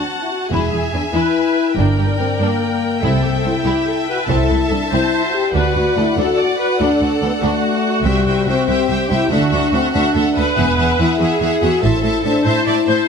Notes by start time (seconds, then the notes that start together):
Already playing: F#4 F#5 A5
0.22 E4
0.31 F#4
0.51 E1 E2 E4 G#4 E5 G#5
0.72 E2 E4 G#4
0.93 E2 D4 B4
1.13 E2 E4 B4
1.76 G1 G2 D4 A#4 D5 G5
1.98 G2 G4
2.19 G2 C4 A#4
2.40 G2 A#3 D4
3.02 C2 C3 C4 E4 A4 E5
3.22 C2 G4
3.45 C2 E4 C5
3.65 C2 E4 G4
3.88 A4
4.08 F#4 B4
4.29 C2 C4 E4 A4 A5
4.50 C2 E4
4.70 C2 D4 A4
4.92 C2 C4 E4 C5
5.25 F#4
5.34 G4
5.55 D2 D4 F#4 B4 D5 F#5
5.76 D2 F#4
5.96 D2 E4 A4
6.17 D2 D4 F#4 A4
6.37 D5
6.59 B4
6.80 D2 D4 A4
7.01 D2 F#4
7.22 D2 B3 A4
7.41 D2 A3 D4 F#4
8.04 C2 C3 G3 C5 E5 G5
8.27 C2 C5 E5 G5
8.48 C2 C4 C5 E5 G5
8.68 C2 G4 C5 E5 G5
8.88 C2 C5 E5 G5
9.10 C2 E4 C5 E5 G5
9.30 D2 D4 F#4 A4 E5 F#5
9.50 D2 A4 E5 F#5
9.72 D2 C4 A4 E5 F#5
9.93 D2 D4 F#4 A4 E5 F#5
10.14 D2 A4 E5 F#5
10.35 D2 A4 B4 E5 F#5
10.56 E1 E2 B3 G#4 E5 F#5
10.78 E2 G#4 E5 F#5
10.98 E2 E4 G#4 E5 F#5
11.20 E2 G#4 E5 F#5
11.41 E2 G#4 E5 F#5
11.61 E2 F#4 G#4 E5 F#5
11.83 A1 A2 E4 A4 C5 E5 A5
12.04 A2 C5 E5 A5
12.23 A2 D4 C5 E5 A5
12.44 A2 E4 C5 E5 A5
12.66 A2 C5 D5 E5 A5
12.86 A2 C5 E5 A5